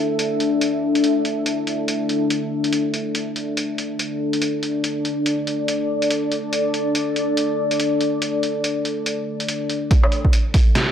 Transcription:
Already playing: ambient pad D4 A4 E5
0.19 closed hi-hat
0.40 closed hi-hat
0.61 closed hi-hat
0.95 closed hi-hat
1.04 closed hi-hat
1.25 closed hi-hat
1.46 closed hi-hat
1.67 closed hi-hat
1.88 closed hi-hat
2.09 closed hi-hat
2.30 closed hi-hat
2.64 closed hi-hat
2.73 closed hi-hat
2.94 closed hi-hat
3.15 ambient pad D5, closed hi-hat
3.36 closed hi-hat
3.57 closed hi-hat
3.78 closed hi-hat
3.99 closed hi-hat
4.33 closed hi-hat
4.42 closed hi-hat
4.63 closed hi-hat
4.84 closed hi-hat
5.05 closed hi-hat
5.26 closed hi-hat
5.47 closed hi-hat
5.68 closed hi-hat
6.02 closed hi-hat
6.11 closed hi-hat
6.32 closed hi-hat
6.53 closed hi-hat
6.74 closed hi-hat
6.95 closed hi-hat
7.16 closed hi-hat
7.37 closed hi-hat
7.71 closed hi-hat
7.80 closed hi-hat
8.01 closed hi-hat
8.22 closed hi-hat
8.43 closed hi-hat
8.64 closed hi-hat
8.85 closed hi-hat
9.06 closed hi-hat
9.40 closed hi-hat
9.48 closed hi-hat
9.70 closed hi-hat
9.91 ambient pad D4 A4 E5, kick, closed hi-hat
10.03 low woodblock
10.12 closed hi-hat
10.25 kick
10.33 closed hi-hat
10.54 kick, open hi-hat
10.75 snare, closed hi-hat

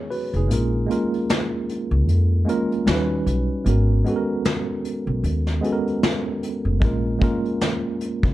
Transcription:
Already playing: tine electric piano G#4 C#5
0.10 tine electric piano F#4 B4, open hi-hat
0.33 upright bass F1, tine electric piano D#4 G#4, closed hi-hat
0.48 upright bass A#1, tine electric piano G#3 A#3 C#4 F4, closed hi-hat
0.53 tine electric piano A#4
0.87 tine electric piano G#3 A#3 C#4 F4
0.91 tine electric piano A#4, closed hi-hat
1.14 closed hi-hat
1.30 snare, closed hi-hat
1.69 closed hi-hat
1.91 upright bass C#2
2.08 upright bass F2, closed hi-hat
2.45 tine electric piano G#3 A#3 C#4 F4, closed hi-hat
2.50 tine electric piano A#4
2.72 closed hi-hat
2.86 upright bass D#2, tine electric piano G3 C#4 D#4 F#4, snare, closed hi-hat
2.91 tine electric piano B4
3.26 upright bass B1, closed hi-hat
3.65 upright bass G#1, tine electric piano G#3 B3 C#4 F#4, closed hi-hat
3.70 tine electric piano A#4
4.04 tine electric piano G#3 B3 C#4 F#4, closed hi-hat
4.10 tine electric piano A4
4.16 tine electric piano A#4
4.45 snare, closed hi-hat
4.85 closed hi-hat
5.07 upright bass B1
5.24 upright bass D#2, closed hi-hat
5.47 snare
5.61 tine electric piano G#3 B3 C#4 F#4, closed hi-hat
5.66 tine electric piano A4
5.72 tine electric piano A#4
5.87 closed hi-hat
6.03 snare, closed hi-hat
6.43 closed hi-hat
6.65 upright bass F1
6.80 upright bass A#1, tine electric piano G#3 A#3 C#4 F4, kick, closed hi-hat
6.85 tine electric piano A#4
7.19 tine electric piano G#3 A#3 C#4 F4, kick, closed hi-hat
7.24 tine electric piano A#4
7.45 closed hi-hat
7.61 snare, closed hi-hat
8.01 closed hi-hat
8.23 upright bass C#2, kick, closed hi-hat

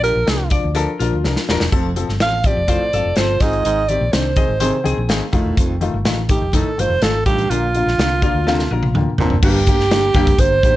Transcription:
Already playing: fingered electric bass A#1
0.03 grand piano F3 D4 G4, alto saxophone A#4, closed hi-hat
0.15 fingered electric bass A#1
0.26 fingered electric bass C2, grand piano F3 D4 A#4, snare, closed hi-hat
0.50 grand piano F3 D4 F4, hollow-body jazz guitar D5, kick, closed hi-hat
0.64 fingered electric bass D2
0.75 grand piano F3 D4 A4, hollow-body jazz guitar A#4, closed hi-hat
0.99 fingered electric bass A#1, grand piano F3 D4 A#4, hollow-body jazz guitar F4, closed hi-hat
1.13 fingered electric bass D2
1.24 fingered electric bass C2, grand piano F3 D4 A#4, snare
1.36 snare
1.49 fingered electric bass D#1, grand piano F3 D4 A#4, snare
1.60 fingered electric bass E1, snare
1.72 fingered electric bass F1, baritone saxophone F2, grand piano F3 C4 A4, kick, splash
1.96 grand piano F3 C4 A4, closed hi-hat
2.09 fingered electric bass G1, snare
2.20 fingered electric bass A1, grand piano F3 C4 A4, alto saxophone F5, snare, closed hi-hat
2.44 grand piano F3 C4 G4, alto saxophone D5, kick, closed hi-hat
2.57 fingered electric bass F1
2.68 baritone saxophone A2, grand piano F3 C4 F4, hollow-body jazz guitar C5, kick, closed hi-hat
2.93 fingered electric bass G1, grand piano F3 C4 F4, hollow-body jazz guitar A4, closed hi-hat
3.05 fingered electric bass F1
3.16 fingered electric bass G1, grand piano F3 C4 A4, hollow-body jazz guitar F4, alto saxophone C5, snare, closed hi-hat
3.40 fingered electric bass G#1, baritone saxophone G#2, grand piano D#3 C4 G#4, alto saxophone D#5, kick, snare, closed hi-hat
3.53 closed hi-hat
3.65 fingered electric bass G#1, baritone saxophone G#2, closed hi-hat
3.88 grand piano D#3 C4 G4, alto saxophone D5, closed hi-hat
4.01 fingered electric bass A#1
4.12 fingered electric bass C2, grand piano D#3 C4 D4, alto saxophone C5, snare, closed hi-hat
4.36 grand piano D#3 C4 G#4, hollow-body jazz guitar D#5, kick, closed hi-hat
4.49 fingered electric bass G#1
4.60 baritone saxophone C3, grand piano D#3 C4 G#4, hollow-body jazz guitar C5, closed hi-hat
4.84 fingered electric bass C2, grand piano D#3 C4 G#4 G5, hollow-body jazz guitar G#4, closed hi-hat
4.97 fingered electric bass A#1
5.09 fingered electric bass G#1, grand piano D#3 C4 G#4 F5, snare, closed hi-hat
5.33 fingered electric bass F1, baritone saxophone A2, grand piano D#3 A3 F4, kick, closed hi-hat
5.46 fingered electric bass E1
5.57 fingered electric bass F1, baritone saxophone F2, kick, closed hi-hat
5.81 grand piano D#3 A3 F4, closed hi-hat
5.94 fingered electric bass G1
6.05 fingered electric bass A1, grand piano D#3 A3 F4, snare, closed hi-hat
6.29 grand piano D#3 A3 D#4, alto saxophone G4, kick, closed hi-hat
6.42 fingered electric bass F1
6.53 baritone saxophone A2, grand piano D#3 A3 D#4, alto saxophone A4, kick, closed hi-hat
6.78 fingered electric bass G1, grand piano D#3 A3 F4, alto saxophone C5, closed hi-hat
6.90 fingered electric bass F1
7.02 fingered electric bass G#1, grand piano D#3 A3 F4, alto saxophone A4, snare, closed hi-hat
7.26 fingered electric bass A1, baritone saxophone G2, grand piano D#3 A3 F4, alto saxophone G4, kick, closed hi-hat
7.39 closed hi-hat
7.50 fingered electric bass A#1, baritone saxophone A#2, grand piano D3 A#3 F4, alto saxophone F4, closed hi-hat
7.75 grand piano D3 A#3 F4, closed hi-hat
7.86 fingered electric bass A#1, snare
7.98 fingered electric bass C2, grand piano D3 A#3 F4, snare, closed hi-hat
8.22 grand piano D3 A#3 F4 D5, hollow-body jazz guitar F4, kick, closed hi-hat
8.35 fingered electric bass D2
8.47 baritone saxophone C3, grand piano D3 A#3 F4 F5, hollow-body jazz guitar A4, snare
8.59 snare
8.71 fingered electric bass A#1, grand piano D3 A#3 F4, hollow-body jazz guitar A#4
8.83 high tom
8.94 fingered electric bass D2, grand piano D3 A#3 F4 G5, mid tom
9.18 fingered electric bass F1, baritone saxophone A#2, grand piano D3 A#3 C4 A5, floor tom
9.30 fingered electric bass F#1, floor tom
9.42 fingered electric bass G1, baritone saxophone G2, grand piano D3 A#3 G4, alto saxophone G4, kick, crash
9.67 grand piano D3 A#3 G4, kick, closed hi-hat
9.80 snare
9.91 grand piano D3 A#3 G4, snare, closed hi-hat
10.14 fingered electric bass F1, baritone saxophone G2, grand piano D3 A#3 G4, kick, closed hi-hat
10.27 kick, closed hi-hat
10.38 fingered electric bass G1, grand piano D3 A#3 G4, alto saxophone C5, kick, closed hi-hat
10.63 fingered electric bass A1, grand piano D3 A#3 G4, kick, closed hi-hat

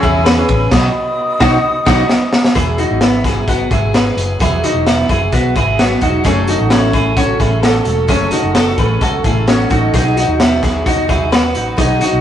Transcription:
Already playing: woodwind section G#4 C#5 B5 E6
0.02 fingered electric bass E2, steel-string acoustic guitar E3 B3 C#4 G#4, clean electric guitar E4 G#4, kick, ride
0.25 clean electric guitar G#4 B4, snare, ride
0.37 steel-string acoustic guitar C#3 E3 B3 C#4 G#4
0.49 fingered electric bass A1, kick, ride
0.71 fingered electric bass B1, steel-string acoustic guitar F#3 B3 D#4 F#4, woodwind section F#4 D#5 D#6, kick, snare, crash
1.40 fingered electric bass B1, steel-string acoustic guitar B2 F#3 B3 D#4 F#4, clean electric guitar D#4 F#4, kick, snare
1.85 fingered electric bass B1, steel-string acoustic guitar F#3 B3 D#4 F#4, clean electric guitar D#4 F#4, kick, snare, crash
2.09 snare
2.33 snare
2.44 snare
2.54 fingered electric bass E1, steel-string acoustic guitar E3 F#3 B3 E4 G#4, clean electric guitar E4 G#4, kick, closed hi-hat
2.78 clean electric guitar D#4 F#4, closed hi-hat
2.91 fingered electric bass G#1
3.01 clean electric guitar B3 E4, snare, closed hi-hat
3.24 steel-string acoustic guitar F#3 B3 E4 G#4, clean electric guitar E4 G#4, kick, snare, closed hi-hat
3.48 clean electric guitar B3 F#4, kick, closed hi-hat
3.70 fingered electric bass G#1, steel-string acoustic guitar F#3 B3 E4 G#4, clean electric guitar E4 G#4, kick, closed hi-hat
3.93 steel-string acoustic guitar F#3 B3 E4 G#4, clean electric guitar G#4 B4, snare, closed hi-hat
4.16 fingered electric bass F#1, steel-string acoustic guitar F#3 B3 E4 G#4, closed hi-hat
4.39 fingered electric bass E1, steel-string acoustic guitar E3 F#3 B3 E4 G#4, clean electric guitar E4 G#4, kick, closed hi-hat
4.64 clean electric guitar D#4 F#4, closed hi-hat
4.74 fingered electric bass E1
4.87 clean electric guitar B3 E4, snare, closed hi-hat
5.09 fingered electric bass F#1, steel-string acoustic guitar F#3 B3 E4 G#4, clean electric guitar E4 G#4, kick, closed hi-hat
5.32 fingered electric bass B1, clean electric guitar B3 F#4, kick, closed hi-hat
5.54 fingered electric bass G#1, steel-string acoustic guitar F#3 B3 E4 G#4, clean electric guitar E4 G#4, kick, closed hi-hat
5.78 steel-string acoustic guitar F#3 B3 E4 G#4, clean electric guitar B3 F#4, snare, closed hi-hat
6.00 fingered electric bass E1, steel-string acoustic guitar F#3 B3 E4 G#4, clean electric guitar D#4 F#4, kick, closed hi-hat
6.24 fingered electric bass F#1, steel-string acoustic guitar F#2 C#3 F#3 A3 C#4 A4, clean electric guitar C#4 G#4, kick, closed hi-hat
6.47 clean electric guitar D#4 F#4, closed hi-hat
6.60 fingered electric bass A1
6.70 clean electric guitar C#4 E4, snare, closed hi-hat
6.92 steel-string acoustic guitar F#3 A3 C#4 A4, clean electric guitar E4 G#4, kick, closed hi-hat
7.17 clean electric guitar C#4 F#4, kick, closed hi-hat
7.39 fingered electric bass A1, steel-string acoustic guitar F#3 A3 C#4 A4, clean electric guitar E4 G#4, kick, closed hi-hat
7.62 steel-string acoustic guitar F#3 A3 C#4 A4, clean electric guitar F#4 A4, snare, closed hi-hat
7.85 fingered electric bass E1, steel-string acoustic guitar F#3 A3 C#4 A4, closed hi-hat
8.07 fingered electric bass F#1, steel-string acoustic guitar F#2 C#3 F#3 A3 C#4 A4, clean electric guitar C#4 G#4, kick, closed hi-hat
8.31 clean electric guitar D#4 F#4, closed hi-hat
8.43 fingered electric bass F#1
8.55 clean electric guitar F#4 A4, snare, closed hi-hat
8.77 fingered electric bass A1, steel-string acoustic guitar F#3 A3 C#4 A4, clean electric guitar G#4 B4, kick, closed hi-hat
9.01 fingered electric bass C#2, clean electric guitar F#4 A4, kick, closed hi-hat
9.23 fingered electric bass A1, steel-string acoustic guitar F#3 A3 C#4 A4, clean electric guitar E4 G#4, kick, closed hi-hat
9.46 steel-string acoustic guitar F#3 A3 C#4 A4, clean electric guitar C#4 F#4, snare, closed hi-hat
9.69 fingered electric bass A1, steel-string acoustic guitar F#3 A3 C#4 A4, clean electric guitar D#4 F#4, kick, closed hi-hat
9.93 fingered electric bass B1, steel-string acoustic guitar B2 F#3 B3 D#4 F#4, clean electric guitar D#4 G#4, kick, closed hi-hat
10.17 clean electric guitar D#4 F#4, closed hi-hat
10.28 fingered electric bass D#2
10.40 clean electric guitar B3 E4, snare, closed hi-hat
10.61 steel-string acoustic guitar F#3 B3 D#4 F#4, clean electric guitar E4 G#4, kick, snare, closed hi-hat
10.86 clean electric guitar D#4 F#4, kick, closed hi-hat
11.08 fingered electric bass D#2, steel-string acoustic guitar F#3 B3 D#4 F#4, clean electric guitar E4 G#4, kick, closed hi-hat
11.31 steel-string acoustic guitar F#3 B3 D#4 F#4, clean electric guitar F#4 B4, snare, closed hi-hat
11.53 fingered electric bass A1, steel-string acoustic guitar F#3 B3 D#4 F#4, closed hi-hat
11.76 fingered electric bass B1, steel-string acoustic guitar B2 F#3 B3 D#4 F#4, clean electric guitar D#4 G#4, kick, closed hi-hat
12.01 clean electric guitar D#4 F#4, closed hi-hat
12.12 fingered electric bass B1

